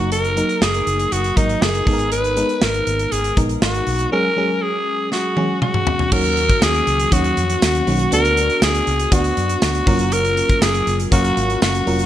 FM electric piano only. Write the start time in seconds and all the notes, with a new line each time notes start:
Already playing: F#3 A#3 D#4 A#4
0.36 F#3 A#3 D#4 A#4
1.36 F#3 A#3 D#4 A#4
1.86 G#3 B3 D#4 A4
1.93 A#4
2.36 G#3 B3 D#4 A#4
3.36 G#3 B3 D#4 A#4
4.11 F#3 G#3 C#4 G#4
4.36 F#3 G#3 C#4 G#4
5.36 F#3 G#3 C#4 G#4
6.11 D#3 F#3 A#3 C#4 F#4
7.11 D#3 F#3 A#3 C#4 F#4
7.87 D#3 F#3 A#3 C#4 F#4
8.12 B3 D4 F#4
9.11 B3 D4 F#4
9.86 F#3 A#3 C#4 F4 A#4
11.11 F#3 A#3 C#4 A#4 F5
11.86 F#3 A#3 C#4 F4 A#4